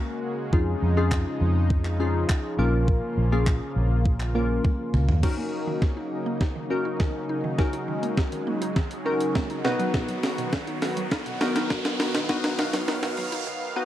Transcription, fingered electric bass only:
0.53 0.73 F2 loud
0.82 1.24 F2 medium
1.41 2.24 F2 medium
2.59 3.00 A#1 loud
3.17 3.59 A#1 medium
3.76 4.59 A#1 medium
4.94 5.07 C#2 medium
5.09 5.22 D#2 medium

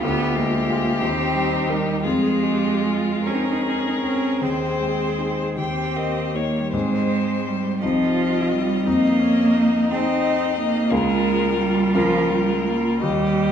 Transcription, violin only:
0.03 2.00 G4 medium
2.04 3.28 F4 medium
3.27 4.42 G#4 soft
4.42 5.48 C5 medium
5.58 5.98 G5 soft
5.97 6.37 D#5 soft
6.35 6.72 C#5 soft
6.73 7.78 C5 soft
7.83 8.85 D#5 soft
8.87 9.90 D#5 medium
9.92 10.93 D#5 medium
10.92 11.94 A#4 medium
11.95 13.01 A#4 medium
13.02 13.52 D#5 soft

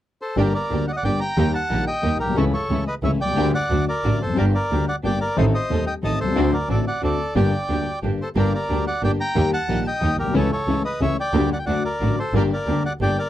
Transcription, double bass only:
0.37 0.51 G1 medium
0.71 0.85 D2 medium
1.04 1.18 G1 medium
1.37 1.51 D#2 medium
1.71 1.84 A#1 medium
2.03 2.17 D#2 medium
2.19 2.36 B1 soft
2.36 2.50 C#2 medium
2.70 2.83 C#2 medium
3.03 3.17 C#2 medium
3.20 3.36 C2 soft
3.36 3.50 D2 medium
3.70 3.84 D2 medium
4.04 4.18 A1 medium
4.21 4.36 F1 soft
4.37 4.51 G1 medium
4.71 4.85 D2 medium
5.05 5.19 G1 medium
5.38 5.51 A1 medium
5.71 5.84 D#2 medium
6.04 6.17 A1 medium
6.20 6.36 C2 medium
6.37 6.50 D2 medium
6.70 6.83 A1 medium
7.03 7.16 D2 medium
7.36 7.49 G1 medium
7.70 7.83 D2 medium
8.03 8.17 G1 medium
8.36 8.50 G1 medium
8.70 8.84 D2 medium
9.03 9.17 G1 medium
9.36 9.50 D#2 medium
9.69 9.83 A#1 medium
10.02 10.15 D#2 medium
10.18 10.33 B1 soft
10.34 10.48 C#2 medium
10.67 10.81 C#2 medium
11.00 11.14 C#2 medium
11.34 11.48 D2 medium
11.67 11.81 D2 medium
12.01 12.15 A1 medium
12.33 12.48 G1 medium
12.67 12.81 D2 medium
13.01 13.15 G1 medium

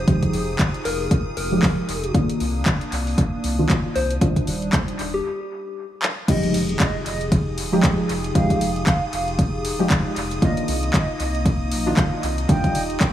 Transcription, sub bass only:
0.34 0.56 F1 loud
0.85 1.07 F1 medium
1.37 1.59 F1 medium
1.89 2.11 F1 loud
2.40 2.63 C2 loud
2.92 3.14 C2 medium
3.44 3.66 C2 medium
3.96 4.18 C2 loud
4.47 4.70 D#1 loud
4.99 5.21 D#1 medium
6.54 6.76 F1 loud
7.06 7.59 F1 medium
7.58 7.80 D#1 medium
8.09 8.32 F1 medium
8.61 8.83 F1 loud
9.13 9.66 F1 medium
9.65 9.87 D#1 loud
10.16 10.39 F1 medium
10.68 10.90 C2 loud
11.20 11.73 C2 medium
11.71 11.94 A#1 loud
12.23 12.45 C2 medium
12.75 12.97 D#1 loud

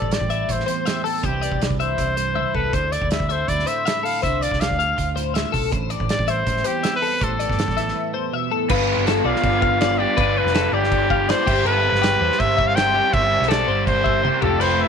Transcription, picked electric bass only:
0.02 0.17 A1 medium
0.20 0.43 A1 medium
0.49 0.64 A1 medium
1.24 1.46 C2 medium
1.51 1.67 B1 medium
1.71 1.93 C2 medium
1.98 2.44 C2 medium
2.54 2.70 C2 medium
2.73 2.96 D2 loud
3.02 3.17 D2 medium
3.20 3.43 D2 medium
3.48 3.64 D2 medium
4.23 4.46 C2 medium
4.51 4.66 C2 medium
4.70 4.93 D2 loud
4.98 5.43 D2 medium
5.54 5.69 B1 medium
5.72 5.95 A1 loud
6.00 6.15 A1 medium
6.19 6.42 A1 loud
6.47 6.62 A1 loud
7.21 7.44 A1 loud
7.49 7.65 G1 medium
7.68 7.91 A1 medium
8.70 8.93 G1 loud
8.97 9.20 G1 medium
9.25 9.33 B1 loud
9.43 10.04 G1 loud
10.18 10.40 G1 loud
10.44 10.67 F1 medium
10.72 11.33 G1 loud
11.47 11.62 G1 medium
11.65 11.88 G1 loud
11.93 12.15 G1 loud
12.21 12.28 E2 loud
12.40 13.00 G1 loud
13.13 13.36 G1 loud
13.40 13.63 B1 medium
13.68 14.28 G1 loud
14.42 14.57 F1 medium
14.60 14.83 F1 loud

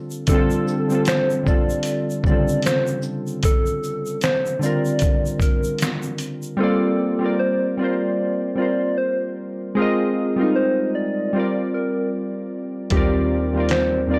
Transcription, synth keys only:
0.00 0.28 D3 medium
0.00 0.29 G3 medium
0.00 0.30 C4 medium
0.00 0.30 F4 medium
0.00 0.30 A4 medium
0.28 0.71 D3 medium
0.28 0.71 G3 medium
0.28 0.72 C4 medium
0.33 0.73 F4 medium
0.33 0.74 A4 loud
0.88 1.31 D3 medium
0.88 1.32 G3 medium
0.88 1.33 C4 medium
0.93 1.34 F4 medium
0.93 1.34 A4 medium
1.43 2.04 D3 medium
1.43 2.05 G3 medium
1.43 2.05 C4 medium
1.48 2.06 F4 medium
1.48 2.07 A4 medium
2.25 2.33 C#3 medium
2.25 3.40 G3 medium
2.25 3.40 C4 medium
2.30 3.42 D3 medium
2.30 3.41 F4 medium
2.30 3.42 A4 medium
4.59 5.74 D3 medium
4.59 5.75 G3 medium
4.59 5.76 C4 medium
4.64 5.77 F4 medium
4.64 5.78 A#4 medium
6.57 7.01 G3 loud
6.57 7.02 C4 medium
6.57 7.03 F4 medium
6.62 7.03 A#3 medium
6.62 7.04 D5 loud
7.19 7.62 G3 medium
7.19 7.63 C4 medium
7.19 7.64 F4 medium
7.24 7.65 A#4 medium
7.24 7.66 D5 medium
7.77 8.37 G3 medium
7.77 8.38 C4 medium
7.77 8.38 F4 medium
7.82 8.39 A#4 medium
7.82 8.40 C5 medium
8.55 9.42 G3 medium
8.55 9.42 C4 medium
8.55 9.43 F4 medium
8.60 9.44 A#4 medium
8.60 9.45 C5 medium
9.75 10.18 G#3 loud
9.75 10.19 C4 medium
9.75 10.20 F4 loud
9.80 10.20 A#4 medium
9.80 10.21 D#5 loud
10.36 11.32 G3 medium
10.36 11.33 C4 medium
10.36 11.34 F4 medium
10.41 11.36 D#4 medium
10.41 11.35 A#4 medium
11.33 12.61 G3 medium
11.33 12.61 C4 medium
11.33 12.62 F4 medium
11.38 12.63 A#4 medium
11.38 12.64 D5 medium
12.90 13.33 D#2 loud
12.90 13.34 G3 medium
12.90 13.35 C4 medium
12.94 13.36 F4 medium
12.94 13.36 A#4 medium
12.94 13.37 D5 loud
13.53 13.95 D#2 medium
13.53 13.96 G3 medium
13.53 13.97 C4 medium
13.57 13.97 F4 medium
13.57 13.98 A#4 medium
13.57 13.99 D5 medium
14.07 14.19 D#2 medium
14.07 14.19 G3 medium
14.07 14.19 C4 medium
14.11 14.19 F4 medium
14.11 14.19 A#4 medium
14.11 14.19 D5 medium

